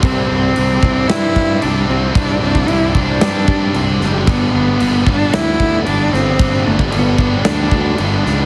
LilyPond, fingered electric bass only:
\new Staff \with { instrumentName = "Fingered electric bass" } { \clef bass \time 4/4 \key c \major \tempo 4 = 113 c,8 c,8 c,8 c,8 g,8 g,8 c,8 c,8 | c,8 c,8 c,8 c,8 g,8 g,8 c,8 fis,,8 | g,,8 g,,8 g,,8 g,,8 d,8 d,8 g,,8 g,,8 | g,,8 g,,8 g,,8 g,,8 d,8 d,8 g,,8 cis,8 | }